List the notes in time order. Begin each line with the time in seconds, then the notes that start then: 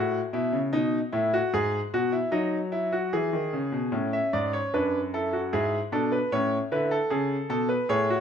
Already playing: A2 F#4
0.33 B2 E4
0.52 C#3
0.73 B2 D#4
1.12 A2 E4
1.34 F#4
1.53 G#2 G#4
1.94 B2 F#4
2.12 E4
2.32 F#3 D#4
2.72 E4
2.92 F#4
3.13 E3 G#4
3.33 D#3
3.53 C#3
3.72 B2
3.92 A2 C#4
4.13 E5
4.33 G#2 D5
4.53 C#5
4.74 F#2 D4 B4
5.14 E4 A4
5.33 F#4
5.53 G#2 E4 G#4
5.92 B2 D4 A4
6.12 B4
6.32 A2 C#4 C#5
6.71 D3 E4 B4
6.91 A4
7.10 C#3 G#4 A4
7.50 B2 A4
7.69 B4
7.89 A2 G#4 C#5
8.10 F#4